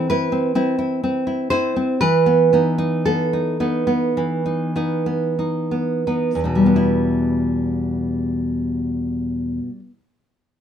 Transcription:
0, 0, Header, 1, 2, 480
1, 0, Start_track
1, 0, Key_signature, 1, "minor"
1, 0, Tempo, 913242
1, 540, Tempo, 983607
1, 1020, Time_signature, 4, 2, 24, 8
1, 1020, Tempo, 1045296
1, 1500, Tempo, 1102941
1, 1980, Tempo, 1226994
1, 2460, Tempo, 1385681
1, 2940, Tempo, 1271186
1, 3900, Tempo, 1234568
1, 4402, End_track
2, 0, Start_track
2, 0, Title_t, "Nylon-string guitar"
2, 0, Program_c, 0, 24
2, 0, Note_on_c, 0, 60, 46
2, 51, Note_on_c, 0, 71, 76
2, 56, Note_on_c, 0, 64, 48
2, 162, Note_off_c, 0, 60, 0
2, 168, Note_on_c, 0, 60, 43
2, 284, Note_off_c, 0, 60, 0
2, 286, Note_off_c, 0, 64, 0
2, 290, Note_on_c, 0, 60, 45
2, 293, Note_on_c, 0, 64, 47
2, 406, Note_off_c, 0, 64, 0
2, 413, Note_on_c, 0, 64, 45
2, 538, Note_off_c, 0, 60, 0
2, 544, Note_on_c, 0, 60, 48
2, 652, Note_off_c, 0, 64, 0
2, 657, Note_on_c, 0, 64, 46
2, 757, Note_off_c, 0, 71, 0
2, 770, Note_off_c, 0, 60, 0
2, 771, Note_off_c, 0, 64, 0
2, 772, Note_on_c, 0, 72, 75
2, 775, Note_on_c, 0, 60, 42
2, 778, Note_on_c, 0, 64, 51
2, 894, Note_off_c, 0, 60, 0
2, 900, Note_on_c, 0, 60, 45
2, 1000, Note_off_c, 0, 64, 0
2, 1007, Note_off_c, 0, 72, 0
2, 1018, Note_on_c, 0, 71, 79
2, 1020, Note_off_c, 0, 60, 0
2, 1021, Note_on_c, 0, 52, 56
2, 1135, Note_on_c, 0, 59, 46
2, 1252, Note_off_c, 0, 59, 0
2, 1257, Note_on_c, 0, 59, 41
2, 1261, Note_on_c, 0, 63, 47
2, 1369, Note_off_c, 0, 63, 0
2, 1375, Note_on_c, 0, 63, 47
2, 1481, Note_off_c, 0, 71, 0
2, 1498, Note_off_c, 0, 59, 0
2, 1499, Note_on_c, 0, 69, 65
2, 1503, Note_on_c, 0, 59, 43
2, 1615, Note_off_c, 0, 63, 0
2, 1620, Note_on_c, 0, 63, 44
2, 1732, Note_off_c, 0, 59, 0
2, 1732, Note_off_c, 0, 63, 0
2, 1737, Note_on_c, 0, 63, 49
2, 1738, Note_on_c, 0, 59, 44
2, 1848, Note_off_c, 0, 59, 0
2, 1854, Note_on_c, 0, 59, 46
2, 1963, Note_off_c, 0, 52, 0
2, 1984, Note_on_c, 0, 52, 47
2, 2091, Note_off_c, 0, 63, 0
2, 2096, Note_on_c, 0, 63, 40
2, 2209, Note_off_c, 0, 59, 0
2, 2211, Note_off_c, 0, 63, 0
2, 2213, Note_on_c, 0, 59, 40
2, 2216, Note_on_c, 0, 63, 42
2, 2328, Note_off_c, 0, 59, 0
2, 2333, Note_on_c, 0, 59, 39
2, 2456, Note_off_c, 0, 63, 0
2, 2460, Note_on_c, 0, 63, 38
2, 2569, Note_off_c, 0, 59, 0
2, 2573, Note_on_c, 0, 59, 37
2, 2688, Note_off_c, 0, 69, 0
2, 2692, Note_off_c, 0, 63, 0
2, 2693, Note_off_c, 0, 59, 0
2, 2697, Note_on_c, 0, 59, 35
2, 2697, Note_on_c, 0, 63, 37
2, 2794, Note_on_c, 0, 40, 40
2, 2820, Note_off_c, 0, 63, 0
2, 2824, Note_on_c, 0, 63, 33
2, 2828, Note_off_c, 0, 52, 0
2, 2829, Note_on_c, 0, 47, 36
2, 2864, Note_on_c, 0, 55, 35
2, 2897, Note_off_c, 0, 59, 0
2, 2902, Note_on_c, 0, 59, 34
2, 2934, Note_off_c, 0, 63, 0
2, 2935, Note_on_c, 0, 64, 42
2, 4007, Note_off_c, 0, 40, 0
2, 4047, Note_off_c, 0, 47, 0
2, 4086, Note_off_c, 0, 55, 0
2, 4128, Note_off_c, 0, 59, 0
2, 4166, Note_off_c, 0, 64, 0
2, 4402, End_track
0, 0, End_of_file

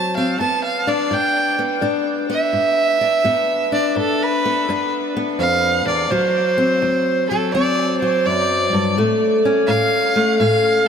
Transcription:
0, 0, Header, 1, 3, 480
1, 0, Start_track
1, 0, Tempo, 713436
1, 266, Time_signature, 4, 2, 24, 8
1, 7320, End_track
2, 0, Start_track
2, 0, Title_t, "Fiddle"
2, 0, Program_c, 0, 110
2, 0, Note_on_c, 0, 81, 91
2, 100, Note_off_c, 0, 81, 0
2, 109, Note_on_c, 0, 77, 81
2, 263, Note_off_c, 0, 77, 0
2, 267, Note_on_c, 0, 81, 92
2, 422, Note_off_c, 0, 81, 0
2, 429, Note_on_c, 0, 77, 89
2, 591, Note_on_c, 0, 74, 88
2, 601, Note_off_c, 0, 77, 0
2, 758, Note_on_c, 0, 79, 99
2, 769, Note_off_c, 0, 74, 0
2, 1059, Note_off_c, 0, 79, 0
2, 1550, Note_on_c, 0, 76, 109
2, 2481, Note_off_c, 0, 76, 0
2, 2514, Note_on_c, 0, 74, 79
2, 2665, Note_off_c, 0, 74, 0
2, 2673, Note_on_c, 0, 69, 94
2, 2841, Note_on_c, 0, 71, 106
2, 2851, Note_off_c, 0, 69, 0
2, 3299, Note_off_c, 0, 71, 0
2, 3632, Note_on_c, 0, 77, 101
2, 3935, Note_off_c, 0, 77, 0
2, 3951, Note_on_c, 0, 74, 93
2, 4110, Note_on_c, 0, 72, 102
2, 4120, Note_off_c, 0, 74, 0
2, 4879, Note_off_c, 0, 72, 0
2, 4907, Note_on_c, 0, 69, 85
2, 5063, Note_off_c, 0, 69, 0
2, 5070, Note_on_c, 0, 74, 100
2, 5374, Note_off_c, 0, 74, 0
2, 5390, Note_on_c, 0, 72, 92
2, 5550, Note_on_c, 0, 74, 103
2, 5560, Note_off_c, 0, 72, 0
2, 6013, Note_off_c, 0, 74, 0
2, 6506, Note_on_c, 0, 77, 106
2, 6971, Note_off_c, 0, 77, 0
2, 6992, Note_on_c, 0, 77, 91
2, 7317, Note_off_c, 0, 77, 0
2, 7320, End_track
3, 0, Start_track
3, 0, Title_t, "Steel-string acoustic guitar"
3, 0, Program_c, 1, 25
3, 0, Note_on_c, 1, 38, 67
3, 0, Note_on_c, 1, 54, 58
3, 0, Note_on_c, 1, 60, 67
3, 102, Note_off_c, 1, 60, 0
3, 117, Note_on_c, 1, 60, 58
3, 233, Note_off_c, 1, 38, 0
3, 254, Note_off_c, 1, 60, 0
3, 268, Note_on_c, 1, 43, 70
3, 269, Note_off_c, 1, 54, 0
3, 274, Note_on_c, 1, 59, 58
3, 587, Note_on_c, 1, 62, 63
3, 714, Note_off_c, 1, 43, 0
3, 746, Note_on_c, 1, 43, 78
3, 1066, Note_off_c, 1, 59, 0
3, 1068, Note_on_c, 1, 59, 60
3, 1193, Note_off_c, 1, 43, 0
3, 1220, Note_on_c, 1, 43, 78
3, 1222, Note_off_c, 1, 62, 0
3, 1224, Note_on_c, 1, 62, 68
3, 1537, Note_off_c, 1, 59, 0
3, 1545, Note_on_c, 1, 59, 62
3, 1670, Note_off_c, 1, 43, 0
3, 1703, Note_on_c, 1, 43, 72
3, 2023, Note_off_c, 1, 62, 0
3, 2026, Note_on_c, 1, 62, 62
3, 2152, Note_off_c, 1, 43, 0
3, 2168, Note_off_c, 1, 59, 0
3, 2182, Note_on_c, 1, 43, 77
3, 2186, Note_on_c, 1, 59, 67
3, 2501, Note_off_c, 1, 62, 0
3, 2504, Note_on_c, 1, 62, 68
3, 2631, Note_off_c, 1, 43, 0
3, 2664, Note_on_c, 1, 43, 78
3, 2981, Note_off_c, 1, 59, 0
3, 2997, Note_on_c, 1, 59, 63
3, 3112, Note_off_c, 1, 43, 0
3, 3153, Note_on_c, 1, 43, 84
3, 3158, Note_off_c, 1, 62, 0
3, 3160, Note_on_c, 1, 62, 67
3, 3467, Note_off_c, 1, 59, 0
3, 3475, Note_on_c, 1, 59, 62
3, 3596, Note_off_c, 1, 43, 0
3, 3625, Note_on_c, 1, 41, 60
3, 3936, Note_off_c, 1, 41, 0
3, 3939, Note_on_c, 1, 40, 68
3, 4092, Note_off_c, 1, 59, 0
3, 4093, Note_off_c, 1, 62, 0
3, 4104, Note_off_c, 1, 40, 0
3, 4108, Note_on_c, 1, 38, 77
3, 4115, Note_on_c, 1, 54, 62
3, 4424, Note_on_c, 1, 60, 67
3, 4554, Note_off_c, 1, 38, 0
3, 4589, Note_on_c, 1, 38, 82
3, 4905, Note_off_c, 1, 54, 0
3, 4920, Note_on_c, 1, 54, 67
3, 5034, Note_off_c, 1, 38, 0
3, 5066, Note_off_c, 1, 60, 0
3, 5075, Note_on_c, 1, 38, 85
3, 5078, Note_on_c, 1, 60, 69
3, 5390, Note_off_c, 1, 54, 0
3, 5397, Note_on_c, 1, 54, 63
3, 5517, Note_off_c, 1, 38, 0
3, 5557, Note_on_c, 1, 42, 65
3, 5866, Note_off_c, 1, 42, 0
3, 5874, Note_on_c, 1, 43, 68
3, 6011, Note_off_c, 1, 60, 0
3, 6031, Note_off_c, 1, 43, 0
3, 6033, Note_off_c, 1, 54, 0
3, 6038, Note_on_c, 1, 45, 76
3, 6043, Note_on_c, 1, 57, 64
3, 6359, Note_on_c, 1, 61, 65
3, 6479, Note_off_c, 1, 45, 0
3, 6513, Note_on_c, 1, 45, 78
3, 6831, Note_off_c, 1, 57, 0
3, 6833, Note_on_c, 1, 57, 60
3, 6956, Note_off_c, 1, 45, 0
3, 6997, Note_on_c, 1, 45, 80
3, 6998, Note_off_c, 1, 61, 0
3, 7001, Note_on_c, 1, 61, 64
3, 7312, Note_off_c, 1, 57, 0
3, 7320, Note_off_c, 1, 45, 0
3, 7320, Note_off_c, 1, 61, 0
3, 7320, End_track
0, 0, End_of_file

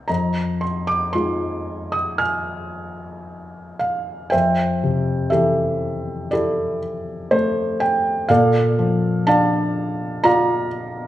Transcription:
0, 0, Header, 1, 2, 480
1, 0, Start_track
1, 0, Key_signature, -4, "minor"
1, 0, Tempo, 1058201
1, 42, Time_signature, 4, 2, 24, 8
1, 1963, Tempo, 991736
1, 1964, Key_signature, -1, "major"
1, 3883, Tempo, 967742
1, 5261, End_track
2, 0, Start_track
2, 0, Title_t, "Felt piano"
2, 0, Program_c, 0, 0
2, 0, Control_c, 0, 64, 127
2, 0, Note_on_c, 0, 87, 41
2, 0, Note_on_c, 0, 91, 57
2, 35, Note_on_c, 0, 82, 53
2, 42, Note_on_c, 0, 75, 36
2, 45, Note_on_c, 0, 41, 45
2, 47, Control_c, 0, 64, 0
2, 51, Note_off_c, 0, 91, 0
2, 52, Note_off_c, 0, 87, 0
2, 140, Control_c, 0, 64, 127
2, 276, Note_on_c, 0, 84, 49
2, 282, Note_off_c, 0, 82, 0
2, 396, Note_on_c, 0, 86, 61
2, 400, Note_off_c, 0, 84, 0
2, 512, Note_on_c, 0, 84, 56
2, 519, Note_on_c, 0, 63, 31
2, 520, Note_off_c, 0, 86, 0
2, 520, Note_on_c, 0, 56, 35
2, 521, Note_on_c, 0, 65, 35
2, 871, Note_on_c, 0, 87, 56
2, 885, Note_off_c, 0, 84, 0
2, 979, Note_off_c, 0, 75, 0
2, 990, Note_on_c, 0, 89, 59
2, 993, Note_on_c, 0, 80, 44
2, 998, Note_off_c, 0, 87, 0
2, 1710, Note_off_c, 0, 89, 0
2, 1721, Note_on_c, 0, 77, 55
2, 1944, Note_off_c, 0, 80, 0
2, 1947, Note_off_c, 0, 41, 0
2, 1947, Note_off_c, 0, 56, 0
2, 1947, Note_off_c, 0, 63, 0
2, 1948, Note_off_c, 0, 65, 0
2, 1950, Note_on_c, 0, 79, 68
2, 1960, Note_on_c, 0, 72, 43
2, 1961, Note_on_c, 0, 76, 46
2, 1966, Note_off_c, 0, 77, 0
2, 1968, Note_on_c, 0, 41, 49
2, 1970, Control_c, 0, 64, 0
2, 2060, Control_c, 0, 64, 127
2, 2209, Note_on_c, 0, 48, 40
2, 2420, Note_off_c, 0, 79, 0
2, 2426, Note_off_c, 0, 76, 0
2, 2434, Note_on_c, 0, 76, 63
2, 2443, Note_on_c, 0, 67, 45
2, 2443, Note_on_c, 0, 69, 42
2, 2449, Note_on_c, 0, 52, 38
2, 2907, Note_off_c, 0, 72, 0
2, 2922, Note_on_c, 0, 74, 61
2, 2925, Note_off_c, 0, 69, 0
2, 2926, Note_off_c, 0, 67, 0
2, 2931, Note_on_c, 0, 64, 43
2, 2932, Note_on_c, 0, 69, 38
2, 2933, Note_on_c, 0, 67, 41
2, 2937, Note_off_c, 0, 76, 0
2, 3151, Note_off_c, 0, 48, 0
2, 3389, Note_off_c, 0, 52, 0
2, 3407, Note_on_c, 0, 72, 70
2, 3410, Note_on_c, 0, 57, 50
2, 3419, Note_off_c, 0, 74, 0
2, 3645, Note_on_c, 0, 79, 69
2, 3653, Note_off_c, 0, 72, 0
2, 3865, Note_off_c, 0, 64, 0
2, 3866, Note_off_c, 0, 41, 0
2, 3866, Note_off_c, 0, 67, 0
2, 3866, Note_off_c, 0, 69, 0
2, 3870, Note_off_c, 0, 57, 0
2, 3879, Note_on_c, 0, 77, 75
2, 3884, Note_on_c, 0, 46, 55
2, 3887, Note_on_c, 0, 74, 55
2, 3889, Control_c, 0, 64, 0
2, 3889, Note_on_c, 0, 69, 56
2, 3890, Note_off_c, 0, 79, 0
2, 3987, Control_c, 0, 64, 127
2, 4128, Note_on_c, 0, 53, 46
2, 4365, Note_off_c, 0, 77, 0
2, 4366, Note_on_c, 0, 81, 82
2, 4369, Note_off_c, 0, 74, 0
2, 4369, Note_on_c, 0, 62, 43
2, 4373, Note_on_c, 0, 77, 55
2, 4376, Note_on_c, 0, 74, 58
2, 4830, Note_off_c, 0, 69, 0
2, 4846, Note_off_c, 0, 74, 0
2, 4846, Note_off_c, 0, 77, 0
2, 4846, Note_on_c, 0, 82, 76
2, 4849, Note_on_c, 0, 65, 59
2, 4854, Note_on_c, 0, 74, 53
2, 4854, Note_on_c, 0, 77, 62
2, 4861, Note_off_c, 0, 81, 0
2, 5066, Note_off_c, 0, 53, 0
2, 5261, Note_off_c, 0, 46, 0
2, 5261, Note_off_c, 0, 62, 0
2, 5261, Note_off_c, 0, 65, 0
2, 5261, Note_off_c, 0, 74, 0
2, 5261, Note_off_c, 0, 77, 0
2, 5261, Note_off_c, 0, 82, 0
2, 5261, End_track
0, 0, End_of_file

